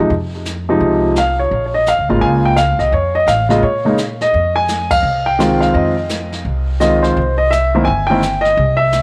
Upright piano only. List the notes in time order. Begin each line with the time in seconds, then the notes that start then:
0.00 D#4
0.69 C3 F3 G#3 D#4
1.18 F5
1.39 C#5
1.66 C#5
1.74 D#5
1.88 F5
2.09 C#3 G#3 A#3 F4
2.21 G#5
2.45 G5
2.56 F5
2.79 D#5
2.94 C#5
3.15 D#5
3.28 F5
3.49 C#3 G#3 A#3 F4 D#5
3.63 C#5
3.85 C#3 G#3 A#3 D#4
4.22 D#5
4.56 G#5
4.91 F5
5.26 G5
5.39 D#3 G#3 C4 F4
5.60 F5
5.74 D#5
6.80 D#3 G#3 C4 F4 D#5
7.03 C5
7.38 D#5
7.51 E5
7.75 D#3 A#3 C4 E4
7.84 G5 G#5
8.07 D#3 A#3 G5
8.11 C4 E4
8.41 D#5
8.77 E5